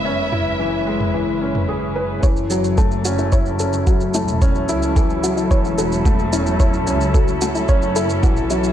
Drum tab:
SH |----------------|xxxxxxxxxxxxxxxx|xxxxxxxxxxxxxxxx|xxxxxxxxxxxxxxxx|
T2 |--o----o---o----|----------------|----------------|----------------|
BD |----------------|o---o---o---o---|o---o---o---o---|o---o---o---o---|